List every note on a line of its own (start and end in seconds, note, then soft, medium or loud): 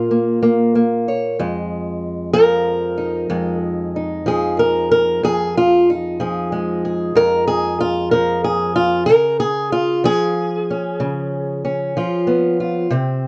0.00 1.39 A#2 medium
0.00 1.07 F4 medium
0.11 0.41 A#3 soft
0.43 0.74 A#3 medium
0.75 1.36 A#3 soft
1.08 1.36 C#5 soft
1.39 3.29 F2 medium
1.39 3.30 G#3 medium
2.33 4.26 F3 medium
2.33 3.62 A#4 loud
2.98 3.95 D#4 soft
3.30 5.22 F2 medium
3.30 6.52 G#3 medium
3.62 4.27 G#4 loud
3.96 5.20 D#4 soft
4.26 5.93 F3 medium
4.26 4.59 G#4 medium
4.59 4.90 A#4 medium
4.92 5.24 A#4 medium
5.23 7.14 F2 medium
5.23 5.56 G#4 loud
5.57 5.89 F4 medium
5.90 9.05 D#4 soft
6.20 8.12 F3 medium
6.20 6.84 G#4 medium
6.52 12.27 G#3 soft
6.85 7.16 G#4 soft
7.15 9.07 F2 medium
7.15 7.47 A#4 loud
7.48 7.80 G#4 medium
7.80 8.11 F4 loud
8.11 9.04 F3 medium
8.11 8.43 A#4 medium
8.44 8.75 G#4 medium
8.76 9.06 F4 medium
9.06 10.04 C#3 medium
9.06 9.39 A#4 loud
9.40 9.72 G#4 loud
9.72 10.04 F4 medium
10.04 11.95 F3 medium
10.04 11.96 G#4 loud
10.71 11.63 C#4 soft
11.00 11.95 C#3 medium
11.65 12.87 C#4 soft
11.97 12.88 F3 medium
11.97 12.59 F4 soft
12.27 12.87 B3 medium
12.60 12.91 F4 medium
12.91 13.27 C3 medium
12.91 13.27 C4 medium